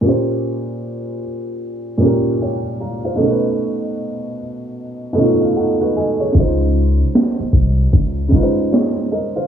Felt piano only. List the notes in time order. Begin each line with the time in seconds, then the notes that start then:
0.01 A#2 A#3 C#4
0.07 G4 C5
1.98 A#2 A#3 C#4
2.04 G4 A#4
2.41 C#5 G5
2.81 F5 A#5
3.05 C5 F5
3.16 B2 A3
3.20 C#4 D#4 A#4
3.30 B4
5.13 B2 A3 D#5
5.17 C#4 D#4 F4
5.41 F5
5.57 D#4 A4 F#5
5.81 F#4 B4
5.97 A4 D#5 G#5
6.20 G#4 C#5
6.32 C#3 G#3 D#4
6.38 F4 C5
8.28 C#3 G#3
8.32 D#4 F4
8.37 B4
8.43 C5
8.72 G#4 C#5
9.12 A#4 D#5
9.36 C5 F5